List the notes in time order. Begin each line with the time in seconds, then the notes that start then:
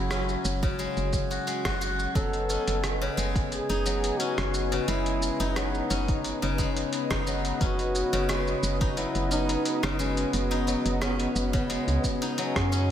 Already playing: F#1 C#3 F#3 G#3 C#4 E4 F#4
0.11 C#4, cross-stick, shaker
0.29 shaker
0.45 F#1, shaker
0.63 C#3, kick, shaker
0.79 G#3, shaker
0.97 F#1, shaker
1.13 kick, shaker
1.31 F#4, shaker
1.47 G#3, shaker
1.65 F#1 F#4, kick, cross-stick, shaker
1.81 F#4, shaker
1.99 shaker
2.15 F#1 F#3 B3 A4 B4 D#5 G#5, kick, closed hi-hat, shaker
2.33 closed hi-hat, shaker
2.50 C#4, shaker
2.67 F#1, closed hi-hat, shaker
2.84 cross-stick, closed hi-hat, shaker
3.02 C#3, shaker
3.17 F#1 G#3, shaker
3.36 kick, closed hi-hat, shaker
3.51 G#4, closed hi-hat, shaker
3.69 F#1 D#4, closed hi-hat, shaker
3.86 F#3, shaker
4.04 closed hi-hat, shaker
4.19 C#4 F#4, closed hi-hat, shaker
4.38 F#1, cross-stick, closed hi-hat, shaker
4.54 shaker
4.72 C#3, closed hi-hat, shaker
4.88 F#1 G#3 E4, closed hi-hat, shaker
5.06 closed hi-hat, shaker
5.22 shaker
5.40 F#1 D#4, closed hi-hat, shaker
5.56 F#3 D#4, cross-stick, closed hi-hat, shaker
5.75 shaker
5.90 F#1 C#4, shaker
6.08 kick, closed hi-hat, shaker
6.24 closed hi-hat, shaker
6.42 F#1 C#3, closed hi-hat, shaker
6.58 G#3, kick, shaker
6.77 closed hi-hat, shaker
6.93 closed hi-hat, shaker
7.10 F#1 D#4, kick, cross-stick, closed hi-hat, shaker
7.27 F#3, shaker
7.45 closed hi-hat, shaker
7.61 F#1 C#4 F#4, kick, closed hi-hat, shaker
7.79 closed hi-hat, shaker
7.95 shaker
8.13 F#1 C#3, closed hi-hat, shaker
8.29 G#3, cross-stick, closed hi-hat, shaker
8.47 shaker
8.63 F#1, shaker
8.81 D#4, kick, closed hi-hat, shaker
8.91 F#4
8.97 F#3 E4, closed hi-hat, shaker
9.15 F#1, closed hi-hat, shaker
9.31 C#4 D#4, shaker
9.49 closed hi-hat, shaker
9.65 closed hi-hat, shaker
9.83 F#1 C#3, cross-stick, closed hi-hat, shaker
9.99 G#3 C#4, shaker
10.17 closed hi-hat, shaker
10.33 F#1 B3, closed hi-hat, shaker
10.51 D#4, closed hi-hat, shaker
10.67 F#3, shaker
10.85 F#1, closed hi-hat, shaker
11.01 C#4, cross-stick, closed hi-hat, shaker
11.20 closed hi-hat, shaker
11.35 F#1, shaker
11.53 C#3, kick, closed hi-hat, shaker
11.70 G#3, closed hi-hat, shaker
11.87 C#2, closed hi-hat, shaker
12.04 kick, shaker
12.22 D#4, closed hi-hat, shaker
12.38 F#3 C#4, closed hi-hat, shaker
12.56 F#2, kick, cross-stick, closed hi-hat, shaker
12.72 C#4, shaker